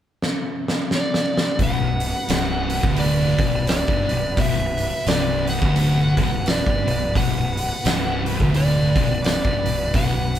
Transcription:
0.22 snare
0.68 snare
0.91 D5, snare
1.14 snare
1.37 snare
1.59 B0 B1 B3 F#4 B4 F#5, kick, open hi-hat
1.80 B0 B1
2.00 open hi-hat
2.29 C1 C2, snare, open hi-hat
2.70 open hi-hat
2.83 D1 D2, kick
2.96 D5, open hi-hat
3.38 B0 B1, kick, open hi-hat
3.54 B0 B1
3.67 D5, snare, open hi-hat
3.88 G1 G2, kick
4.09 B0 B1, open hi-hat
4.37 B0 B1 E5, kick, open hi-hat
4.58 B0 B1
4.78 open hi-hat
5.06 C1 C2 D5, snare, open hi-hat
5.47 F#5, open hi-hat
5.62 D1 D2, kick
5.76 open hi-hat
6.17 B0 B1, kick, open hi-hat
6.31 B0 B1
6.46 D5, snare, open hi-hat
6.66 G1 G2, kick
6.86 B0 B1, open hi-hat
7.15 B0 B1 F#5, kick, open hi-hat
7.35 B0 B1
7.57 open hi-hat
7.85 C1 C2, snare, open hi-hat
8.26 open hi-hat
8.40 D1 D2, kick
8.54 D5, open hi-hat
8.95 B0 B1, kick, open hi-hat
9.10 B0 B1
9.24 D5, snare, open hi-hat
9.44 G1 G2, kick
9.65 B0 B1, open hi-hat
9.94 B0 B1 F#5, kick, open hi-hat
10.14 B0 B1
10.35 open hi-hat

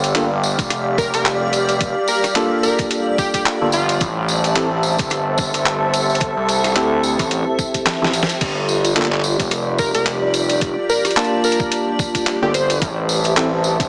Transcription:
Already playing: G1 G4 A4 D5 F5 E6
0.04 closed hi-hat, tambourine
0.15 G1 A#3 D4 F4 A4, clap, closed hi-hat, tambourine
0.44 tambourine
0.59 F1, kick, closed hi-hat, tambourine
0.70 cross-stick, closed hi-hat, tambourine
0.98 A#4, kick, tambourine
1.14 F1 A#4, closed hi-hat, tambourine
1.25 clap, closed hi-hat, tambourine
1.53 closed hi-hat, tambourine
1.69 closed hi-hat, tambourine
1.81 kick, closed hi-hat, tambourine
2.08 A#4, tambourine
2.24 cross-stick, closed hi-hat, tambourine
2.36 A#3 D4 F4 A4, clap, closed hi-hat, tambourine
2.63 A#4, tambourine
2.78 kick, closed hi-hat, tambourine
2.90 closed hi-hat, tambourine
3.18 G4, kick, tambourine
3.34 G4, kick, closed hi-hat, tambourine
3.46 clap, closed hi-hat, tambourine
3.61 G1 A#3 D4 F4 A4
3.72 F4, closed hi-hat, tambourine
3.89 closed hi-hat, tambourine
4.00 A1 G4 A4 C5 E5 A5, kick, closed hi-hat, tambourine
4.29 tambourine
4.43 E5, closed hi-hat, tambourine
4.55 A1 C4 E4 G4 A4, clap, closed hi-hat, tambourine
4.83 tambourine
4.98 G1, kick, closed hi-hat, tambourine
5.10 cross-stick, closed hi-hat, tambourine
5.38 kick, tambourine
5.54 G1, closed hi-hat, tambourine
5.66 clap, closed hi-hat, tambourine
5.94 closed hi-hat, tambourine
6.10 tambourine
6.15 closed hi-hat
6.20 kick, closed hi-hat, tambourine
6.37 C2
6.49 closed hi-hat, tambourine
6.64 cross-stick, closed hi-hat, tambourine
6.67 cross-stick
6.72 C4 E4 G4 A4, cross-stick
6.76 D2, cross-stick, clap, closed hi-hat
6.85 cross-stick
7.03 tambourine
7.19 A1, kick, cross-stick, closed hi-hat, tambourine
7.31 closed hi-hat, tambourine
7.59 kick, tambourine
7.74 kick, closed hi-hat, tambourine
7.86 snare, clap, closed hi-hat, tambourine
8.02 A1 C4 E4 G4 A4, snare
8.13 closed hi-hat, tambourine
8.23 snare
8.29 closed hi-hat, tambourine
8.41 G1 F4 G4 D5, kick, closed hi-hat, crash, tambourine
8.59 D5
8.69 tambourine
8.85 closed hi-hat, tambourine
8.96 G1 A#3 D4 F4 A4, clap, closed hi-hat
9.01 clap
9.05 clap
9.12 clap
9.15 clap
9.20 clap, tambourine
9.40 F1, kick, closed hi-hat, tambourine
9.51 cross-stick, closed hi-hat, tambourine
9.78 A#4, kick, tambourine
9.94 F1 A#4, closed hi-hat, tambourine
10.06 clap, closed hi-hat, tambourine
10.34 closed hi-hat, tambourine
10.49 closed hi-hat, tambourine
10.61 kick, closed hi-hat
10.89 A#4, tambourine
11.05 cross-stick, closed hi-hat, tambourine
11.11 closed hi-hat
11.17 A#3 D4 F4 A5, clap, closed hi-hat, tambourine
11.24 closed hi-hat
11.44 A#4, tambourine
11.52 closed hi-hat
11.60 kick, tambourine
11.71 closed hi-hat, tambourine
11.99 kick, tambourine
12.15 kick, closed hi-hat, tambourine
12.27 clap, closed hi-hat
12.42 G1 A#3 D4 F4 G4 A4
12.54 C5, closed hi-hat, tambourine
12.70 closed hi-hat, tambourine
12.81 A1 G4 A4 C5 E5 A5, kick, closed hi-hat, tambourine
13.07 E5, tambourine
13.24 closed hi-hat, tambourine
13.37 A1 C4 E4 G4 A4, clap, closed hi-hat, tambourine
13.64 tambourine
13.80 G1, kick, closed hi-hat, tambourine

